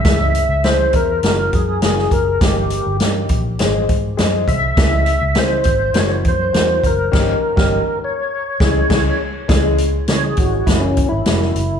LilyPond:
<<
  \new Staff \with { instrumentName = "Tonewheel organ" } { \time 4/4 \key cis \minor \tempo 4 = 102 e''4 bis'8 ais'4 gis'8 gis'8 ais'8 | g'4 r2 r8 e''8~ | e''4 bis'4 cis''8 bis'4 ais'8~ | ais'4. cis''2 r8 |
r4 cis''16 gis'16 fis'8 e'16 cis'8 e'4~ e'16 | }
  \new Staff \with { instrumentName = "Upright piano" } { \time 4/4 \key cis \minor <gis cis' e' gis'>8 r8 <gis cis' e' gis'>8 r8 <ais cis' e' fis'>8 r8 <ais cis' e' fis'>8 r8 | <ais cis' dis' g'>8 r8 <ais cis' dis' g'>8 r8 <gis bis dis' gis'>8 r8 <gis bis dis' gis'>8 r8 | <gis cis' e' gis'>8 r8 <gis cis' e' gis'>8 r8 <ais cis' e' fis'>8 r8 <ais cis' e' fis'>8 r8 | <ais cis' dis' g'>8 r16 <ais cis' dis' g'>8 r4 r16 <gis cis' e' gis'>8 <gis cis' e' gis'>8 r8 |
<gis cis' e' gis'>8 r8 <gis cis' e' gis'>16 r16 <gis cis' e' gis'>16 r16 <ais cis' e' fis'>8 r8 <ais cis' e' fis'>8 r8 | }
  \new Staff \with { instrumentName = "Fingered electric bass" } { \clef bass \time 4/4 \key cis \minor cis,8. cis,8. e,8 fis,,8 fis,8 fis,,8 fis,,8 | g,,8. g,,16 g,8 ais,,8 gis,,8 gis,8 fis,8 bis,,8 | cis,8. cis,16 cis8 gis,,8 fis,,8 fis,8 e,8 fis,,8 | g,,8 r16 g,,8 r4 r16 cis,8 cis,8 r8 |
cis,4 cis8 gis,,8 fis,,8. gis,,16 eis,,8 fis,,8 | }
  \new DrumStaff \with { instrumentName = "Drums" } \drummode { \time 4/4 <hh bd sn>8 hh8 <hh sn>8 <hh bd>8 <hh sn>8 <hh bd>8 <hh sn>16 sn16 <hh bd>8 | <hh bd sn>8 hh8 <hh sn>8 <hh bd>8 <hh sn>8 <hh bd>8 <hh sn>8 <hh bd>8 | <hh bd sn>8 hh8 <hh sn>8 <hh bd>8 <hh sn>8 <hh bd>8 <hh sn>8 <hh bd>8 | <cymc bd sn>8. <bd sn>16 r4 r8 <bd sn>8 <cymc bd sn>4 |
<hh bd sn>8 hh8 <hh sn>8 <hh bd>8 <hh bd sn>8 <hh bd>8 <hh sn>16 sn16 hh8 | }
>>